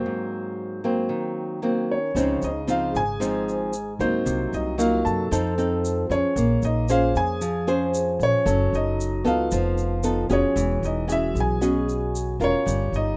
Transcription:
0.00 0.80 F#3 medium
0.00 0.80 A#3 medium
0.00 0.80 C4 medium
0.00 1.58 C5 medium
0.06 1.08 G#2 medium
0.84 1.59 F#3 medium
0.84 1.59 A#3 medium
0.84 1.59 C4 medium
1.09 2.12 D#3 medium
1.62 1.96 F#3 medium
1.62 1.97 A#3 soft
1.62 1.97 C4 medium
1.87 2.37 C#4 medium
1.92 2.44 C#5 medium
2.15 2.40 C#2 medium
2.15 3.18 C#3 medium
2.15 2.49 F3 medium
2.15 2.50 C4 medium
2.15 2.50 D#4 medium
2.15 shaker medium
2.41 2.91 C#2 medium
2.41 2.65 D#4 medium
2.41 2.70 D#5 medium
2.41 shaker soft
2.66 3.02 F3 medium
2.66 3.02 C4 medium
2.66 3.02 D#4 medium
2.66 2.90 F4 medium
2.66 shaker medium
2.70 2.96 F5 medium
2.91 3.96 G#1 medium
2.91 3.94 G#4 medium
2.95 3.97 G#5 loud
2.95 shaker soft
3.20 4.23 G#2 medium
3.20 3.73 F3 medium
3.20 3.73 C4 medium
3.20 3.73 D#4 medium
3.20 shaker medium
3.49 shaker soft
3.73 shaker medium
3.98 4.12 C#2 medium
3.98 4.74 F#3 medium
3.98 4.75 A#3 medium
3.98 4.48 C4 medium
3.98 4.75 D#4 medium
3.98 4.54 C5 medium
3.98 shaker soft
4.25 4.50 C2 loud
4.25 5.28 C3 medium
4.25 shaker medium
4.53 5.01 C2 medium
4.53 4.77 D#4 medium
4.53 4.78 D#5 medium
4.53 shaker soft
4.78 5.29 F#3 medium
4.78 5.29 A#3 medium
4.78 5.29 D#4 medium
4.78 5.03 F4 medium
4.78 5.06 F5 medium
4.78 shaker medium
5.05 5.30 F#2 medium
5.05 6.06 A4 medium
5.05 6.13 A5 medium
5.05 shaker soft
5.31 6.06 F2 loud
5.31 6.34 F3 medium
5.31 5.53 C4 medium
5.31 5.53 D#4 medium
5.31 5.54 A4 medium
5.31 shaker medium
5.58 6.06 C4 medium
5.58 6.06 D#4 medium
5.58 6.06 A4 medium
5.58 shaker soft
5.85 shaker medium
6.09 6.22 F2 medium
6.09 6.58 C#4 medium
6.09 6.85 C#4 medium
6.09 6.85 G#4 medium
6.09 6.65 C#5 medium
6.09 shaker soft
6.36 6.60 A#1 medium
6.36 7.39 A#3 medium
6.36 shaker medium
6.62 7.11 A#1 medium
6.62 6.87 D#4 medium
6.62 6.91 D#5 medium
6.62 shaker soft
6.89 7.41 C#4 medium
6.89 7.13 F4 medium
6.89 7.42 G#4 medium
6.89 7.41 C5 medium
6.89 7.14 F5 medium
6.89 shaker medium
7.15 8.16 F2 medium
7.15 7.93 G#4 medium
7.15 8.24 G#5 loud
7.15 shaker soft
7.41 8.44 F3 medium
7.41 shaker medium
7.67 8.42 C#4 medium
7.67 8.42 G#4 medium
7.67 8.42 C5 medium
7.67 shaker soft
7.94 shaker medium
8.19 8.32 A#1 medium
8.19 8.69 C#4 medium
8.19 8.76 C#5 loud
8.19 shaker soft
8.46 8.70 F#1 loud
8.46 9.48 F#3 medium
8.46 9.21 C#4 medium
8.46 9.21 A4 medium
8.46 shaker medium
8.73 9.21 F#1 medium
8.73 9.22 D#4 medium
8.73 9.28 D#5 medium
8.73 shaker soft
9.00 shaker medium
9.24 9.49 C#2 medium
9.24 9.99 B3 medium
9.24 9.99 D#4 medium
9.24 10.27 F4 medium
9.24 10.00 A4 medium
9.24 10.27 F5 medium
9.24 shaker soft
9.51 10.26 F1 loud
9.51 10.54 F3 medium
9.51 shaker medium
9.78 shaker soft
10.03 10.26 B3 medium
10.03 10.26 D#4 medium
10.03 10.26 A4 medium
10.03 shaker medium
10.30 10.42 F1 medium
10.30 11.04 C#4 medium
10.30 10.79 C#4 medium
10.30 11.05 F#4 medium
10.30 11.05 G#4 medium
10.30 10.86 C#5 medium
10.30 shaker soft
10.56 10.80 E1 loud
10.56 11.59 E3 medium
10.56 shaker medium
10.83 11.31 E1 medium
10.83 11.07 D#4 medium
10.83 11.11 D#5 medium
10.83 shaker soft
11.08 11.57 C#4 medium
11.08 11.33 E4 medium
11.08 11.57 F#4 medium
11.08 11.57 G#4 medium
11.08 shaker medium
11.12 11.38 E5 loud
11.35 12.36 B1 medium
11.35 12.17 G#4 medium
11.35 shaker soft
11.40 12.39 G#5 medium
11.61 12.64 B2 medium
11.61 12.36 C#4 medium
11.61 12.36 F#4 medium
11.61 12.36 G#4 medium
11.61 shaker medium
11.89 shaker soft
12.15 shaker medium
12.39 12.52 E1 medium
12.39 12.89 C#4 medium
12.39 13.15 C#4 medium
12.39 13.15 F4 medium
12.39 13.15 A#4 medium
12.39 shaker soft
12.44 12.96 C#5 loud
12.66 12.91 G1 medium
12.66 13.17 G3 medium
12.66 shaker medium
12.92 13.17 G1 medium
12.92 13.17 D#4 medium
12.92 13.17 D#5 medium
12.92 shaker soft

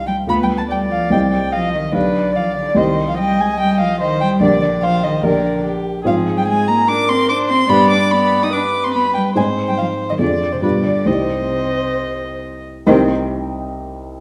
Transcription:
0.00 0.25 C2 soft
0.00 0.25 D#4 soft
0.00 0.25 G4 soft
0.00 0.25 C5 soft
0.07 0.15 G3 medium
0.07 0.16 G5 medium
0.27 1.09 D2 soft
0.27 1.09 B3 soft
0.27 0.42 B3 medium
0.27 1.09 F4 soft
0.27 0.68 B4 soft
0.27 1.10 F5 soft
0.27 0.35 B5 medium
0.42 0.48 G3 soft
0.42 0.49 G5 medium
0.56 0.62 A3 soft
0.56 0.63 A5 medium
0.71 0.91 G3 soft
0.71 1.52 D5 soft
0.71 0.79 G5 medium
0.92 1.14 F3 medium
0.92 1.11 F5 medium
1.10 1.92 C2 soft
1.10 1.32 G3 medium
1.10 1.92 C4 soft
1.10 1.92 G4 soft
1.10 1.92 D#5 soft
1.10 1.20 G5 medium
1.32 1.41 G3 soft
1.32 1.54 G5 medium
1.53 1.76 F3 medium
1.53 1.94 D#5 soft
1.53 1.73 F5 medium
1.74 1.94 D#3 medium
1.74 1.93 D#5 medium
1.93 2.74 B1 soft
1.93 2.36 D3 soft
1.93 2.74 D4 soft
1.93 2.74 G4 soft
1.93 2.35 B4 soft
1.93 2.37 D5 medium
1.93 2.75 F5 soft
2.35 2.44 F3 medium
2.35 2.79 D5 soft
2.35 2.56 F5 medium
2.56 2.79 D3 soft
2.56 2.79 D5 medium
2.75 4.37 C2 soft
2.75 3.08 D#3 medium
2.75 4.37 C4 soft
2.75 4.37 G4 soft
2.75 3.18 C5 soft
2.75 4.38 D#5 soft
2.75 3.08 D#5 medium
3.08 3.20 F3 medium
3.08 3.19 F5 medium
3.19 3.40 G3 medium
3.19 3.99 D#5 soft
3.19 3.42 G5 medium
3.39 3.59 G#3 medium
3.39 3.59 G#5 medium
3.60 3.82 G3 medium
3.60 3.80 G5 medium
3.80 4.02 F3 medium
3.80 4.00 F5 medium
4.00 4.23 D#3 medium
4.00 4.41 C5 medium
4.00 4.20 D#5 medium
4.21 4.44 G3 medium
4.21 4.29 G5 medium
4.40 5.21 A#1 soft
4.40 4.61 D3 medium
4.40 5.21 D4 soft
4.40 5.22 G4 soft
4.40 5.22 A#4 soft
4.40 4.61 D5 medium
4.40 4.85 D5 medium
4.61 4.83 D3 medium
4.61 4.69 D5 medium
4.82 5.03 F3 medium
4.82 5.24 C5 medium
4.82 5.05 F5 medium
5.03 5.12 D#3 medium
5.03 5.25 D#5 medium
5.23 6.03 A#1 soft
5.23 5.65 D3 medium
5.23 6.04 D4 soft
5.23 6.04 G4 soft
5.23 6.04 A#4 soft
5.23 5.65 A#4 medium
5.23 5.65 D5 medium
5.66 6.06 G4 medium
6.05 7.66 G#2 medium
6.05 6.38 F3 medium
6.05 7.66 C4 soft
6.05 7.67 F4 soft
6.05 6.87 G#4 medium
6.05 7.67 C5 soft
6.05 6.15 F5 medium
6.37 6.47 G3 medium
6.37 6.47 G5 medium
6.48 6.70 G#3 medium
6.48 6.70 G#5 medium
6.68 6.90 A#3 medium
6.68 6.90 A#5 medium
6.88 7.11 D4 medium
6.88 7.31 A#4 medium
6.88 7.10 D6 medium
7.09 7.31 C4 medium
7.09 7.29 C6 medium
7.29 7.52 D4 medium
7.29 7.70 C5 medium
7.29 7.37 D6 medium
7.49 7.70 C4 medium
7.49 7.71 C6 medium
7.69 9.32 G2 soft
7.69 7.94 B3 medium
7.69 9.32 D4 soft
7.69 9.32 G4 soft
7.69 9.32 B4 soft
7.69 8.52 D5 medium
7.69 7.90 B5 medium
7.91 8.14 D4 medium
7.91 8.13 D6 medium
8.11 8.44 B3 medium
8.11 8.45 B5 medium
8.43 8.53 D#4 medium
8.43 8.54 D#6 medium
8.53 8.61 D4 medium
8.53 9.36 B4 medium
8.53 8.85 D6 medium
8.84 8.95 C4 medium
8.84 8.93 C6 medium
8.94 9.04 B3 medium
8.94 9.14 B5 medium
9.14 9.24 G3 medium
9.14 9.22 G5 medium
9.35 10.17 G#2 soft
9.35 9.45 G#3 medium
9.35 10.18 C4 soft
9.35 10.18 D#4 soft
9.35 10.18 C5 soft
9.35 10.19 C5 medium
9.35 9.44 G#5 medium
9.68 9.72 G3 medium
9.68 9.78 G5 medium
9.78 9.87 F3 medium
9.78 9.86 F5 medium
10.10 10.15 D#3 medium
10.10 10.14 D#5 medium
10.19 10.61 F2 soft
10.19 10.30 D3 medium
10.19 10.60 D4 soft
10.19 10.61 F4 soft
10.19 10.62 G#4 soft
10.19 10.54 D5 medium
10.19 10.63 D5 medium
10.52 10.57 C3 soft
10.52 10.62 C5 soft
10.62 11.05 G2 soft
10.62 10.87 B2 soft
10.62 11.05 D4 soft
10.62 11.05 F4 soft
10.62 11.06 G4 soft
10.62 10.71 B4 soft
10.62 11.09 D5 soft
10.85 11.09 D3 soft
10.85 11.08 D5 medium
11.06 12.82 C2 soft
11.06 12.42 C3 soft
11.06 12.82 C4 soft
11.06 12.82 D#4 soft
11.06 12.82 G4 soft
11.06 11.15 C5 soft
11.06 12.64 D#5 soft
11.14 11.24 D5 soft
11.22 12.41 C5 medium
12.86 13.11 C2 medium
12.86 13.11 C3 medium
12.86 13.11 D#3 medium
12.86 13.11 C4 medium
12.86 13.11 D#4 medium
12.86 13.11 G4 medium
12.86 13.11 C5 medium
12.86 13.11 D#5 medium

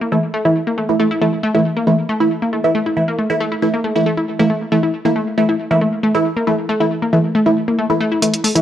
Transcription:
0.01 0.08 A#3 medium
0.12 0.18 E3 medium
0.12 0.19 A3 medium
0.12 0.18 A3 medium
0.12 0.18 E4 loud
0.34 0.38 A3 loud
0.45 0.54 E3 medium
0.45 0.54 A3 medium
0.45 0.49 E4 medium
0.45 0.54 E4 loud
0.67 0.74 A#3 medium
0.78 0.85 A3 medium
0.89 0.95 E3 medium
0.89 0.95 A3 medium
0.89 0.95 E4 medium
1.00 1.06 E3 medium
1.00 1.04 A3 loud
1.00 1.06 A3 medium
1.00 1.06 E4 medium
1.11 1.15 E4 medium
1.21 1.27 E3 medium
1.21 1.27 A3 medium
1.21 1.28 A3 medium
1.21 1.27 E4 medium
1.43 1.48 A3 loud
1.55 1.60 E3 medium
1.55 1.60 A3 medium
1.55 1.60 E4 loud
1.55 1.59 E4 medium
1.77 1.83 A#3 medium
1.87 1.93 E3 medium
1.87 1.93 A3 medium
1.87 1.94 A3 medium
1.87 1.93 E4 medium
2.09 2.13 A3 loud
2.20 2.29 E3 medium
2.20 2.29 A3 medium
2.20 2.29 E4 loud
2.20 2.24 E4 medium
2.42 2.49 A#3 medium
2.53 2.60 A3 medium
2.64 2.73 E3 medium
2.64 2.73 A3 medium
2.64 2.73 E4 loud
2.75 2.79 A3 loud
2.86 2.90 E4 medium
2.97 3.03 E3 medium
2.97 3.03 A3 medium
2.97 3.03 E4 medium
3.08 3.14 A#3 medium
3.19 3.25 A3 medium
3.30 3.35 E3 medium
3.30 3.36 A3 medium
3.30 3.35 E4 loud
3.40 3.45 A3 loud
3.52 3.56 E4 medium
3.62 3.68 E3 medium
3.62 3.68 A3 medium
3.62 3.68 E4 medium
3.74 3.80 A#3 medium
3.84 3.91 A3 medium
3.96 4.05 E3 medium
3.96 4.05 A3 medium
3.96 4.05 E4 loud
4.06 4.10 A3 loud
4.17 4.21 E4 medium
4.39 4.48 E3 medium
4.39 4.48 A3 medium
4.39 4.46 A#3 medium
4.39 4.48 E4 loud
4.50 4.57 A3 medium
4.72 4.78 E3 medium
4.72 4.78 A3 medium
4.72 4.76 A3 loud
4.72 4.78 E4 medium
4.83 4.87 E4 medium
5.05 5.11 E3 medium
5.05 5.11 A3 medium
5.05 5.12 A#3 medium
5.05 5.11 E4 loud
5.16 5.23 A3 medium
5.38 5.44 E3 medium
5.38 5.44 A3 medium
5.38 5.42 A3 loud
5.38 5.44 E4 medium
5.49 5.53 E4 medium
5.71 5.80 E3 medium
5.71 5.80 A3 medium
5.71 5.77 A#3 medium
5.71 5.80 E4 loud
5.81 5.88 A3 medium
6.03 6.07 A3 loud
6.15 6.24 E3 loud
6.15 6.24 A3 medium
6.15 6.24 E4 loud
6.15 6.18 E4 medium
6.37 6.43 A#3 medium
6.47 6.53 E3 medium
6.47 6.53 A3 medium
6.47 6.54 A3 medium
6.47 6.53 E4 medium
6.69 6.73 A3 loud
6.80 6.86 E3 medium
6.80 6.86 A3 medium
6.80 6.86 E4 loud
6.80 6.84 E4 medium
7.02 7.09 A#3 medium
7.13 7.19 E3 medium
7.13 7.19 A3 medium
7.13 7.20 A3 medium
7.13 7.19 E4 medium
7.35 7.39 A3 loud
7.46 7.55 E3 medium
7.46 7.55 A3 medium
7.46 7.55 E4 loud
7.46 7.50 E4 medium
7.68 7.74 A#3 medium
7.79 7.85 A3 medium
7.90 7.99 E3 loud
7.90 7.99 A3 medium
7.90 7.99 E4 loud
8.00 8.05 A3 loud
8.12 8.15 E4 medium
8.22 8.28 E3 medium
8.22 8.29 A3 medium
8.22 8.28 A3 medium
8.22 8.28 E4 medium
8.22 closed hi-hat medium
8.34 closed hi-hat medium
8.44 8.48 A3 loud
8.44 open hi-hat loud
8.55 8.61 E3 medium
8.55 8.61 A3 medium
8.55 8.61 E4 loud
8.55 8.59 E4 medium
8.55 closed hi-hat medium

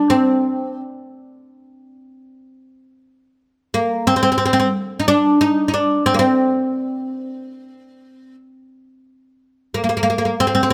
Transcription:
0.00 0.10 D4 medium
0.10 0.80 C4 medium
3.74 4.09 A#3 medium
4.07 4.14 C4 medium
4.16 4.21 C4 medium
4.23 4.30 C4 medium
4.32 4.37 C4 medium
4.38 4.44 C4 medium
4.46 4.52 C4 medium
4.53 4.58 C4 medium
4.60 4.67 C4 medium
5.00 5.07 D#4 medium
5.08 5.41 D4 loud
5.41 5.67 D#4 medium
5.68 5.73 D#4 medium
5.74 6.06 D4 medium
6.06 6.13 C4 medium
6.14 6.19 A#3 medium
6.19 8.35 C4 medium
9.74 9.81 A#3 medium
9.84 9.88 A#3 medium
9.89 9.96 A#3 medium
9.97 10.02 A#3 medium
10.03 10.09 A#3 medium
10.10 10.17 A#3 medium
10.18 10.24 A#3 medium
10.25 10.33 A#3 soft
10.40 10.46 C4 medium
10.47 10.53 C4 medium
10.55 10.62 C4 medium
10.63 10.69 C4 medium

